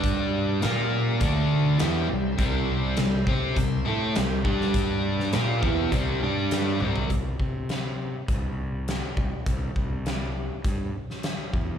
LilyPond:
<<
  \new Staff \with { instrumentName = "Tonewheel organ" } { \time 4/4 \key c \major \tempo 4 = 102 <d' g' d'' g''>4 <bes f' bes' f''>4 <a d' a' d''>4 <c' e' g' c''>4~ | <c' e' g' c''>2.~ <c' e' g' c''>8 <g d' g' d''>8~ | <g d' g' d''>4 <c' e' g' c''>4. <g d' g' d''>4 r8 | r1 |
r1 | }
  \new Staff \with { instrumentName = "Distorted electric guitar" } { \time 4/4 \key c \major <g d' g'>4 <bes f' bes'>4 <d a d'>4 <e b e'>8 <c g>8 | <c g c'>4 <c g>8 <c' g' c''>8 <c g>8 <a e' a'>8 <c g>8 <g d' g'>8~ | <g d' g'>4 <bes f' bes'>8 <e b e'>8 <c g c'>8 <g d' g'>4 <c g c'>8 | r1 |
r1 | }
  \new Staff \with { instrumentName = "Overdriven electric guitar" } { \time 4/4 \key c \major <g d' g'>4 <bes f' bes'>4 <d a d'>4 <e b e'>8 <c g>8 | <c g c'>4 <c g>8 <c' g' c''>8 <c g>8 <a e' a'>8 <c g>8 <g d' g'>8~ | <g d' g'>4 <bes f' bes'>8 <e b e'>8 <c g c'>8 <g d' g'>4 <c g c'>8 | r1 |
r1 | }
  \new Staff \with { instrumentName = "Fingered electric bass" } { \clef bass \time 4/4 \key c \major g,4 bes,4 d,4 e,8 c,8 | c,4 c,8 c8 c,8 a,8 c,8 g,8~ | g,4 bes,8 e,8 c,8 g,4 c,8 | c,8 c4. c,4. c,16 r16 |
c,8 c,4. g,8 r4 e,8 | }
  \new DrumStaff \with { instrumentName = "Drums" } \drummode { \time 4/4 <hh bd>4 <hh sn>4 <hh bd>4 <hh sn>4 | <hh bd>4 <hh sn>8 bd8 <hh bd>4 <hh sn>8 bd16 sn16 | <hh bd>8. sn16 <hh sn>8 bd8 <hh bd>4 <hh sn>8 tommh16 tomfh16 | <hh bd>8 bd8 <hh sn>4 <hh bd>4 <hh sn>8 bd8 |
<hh bd>8 bd8 <hh sn>4 <hh bd>8. sn16 <hh sn>8 bd8 | }
>>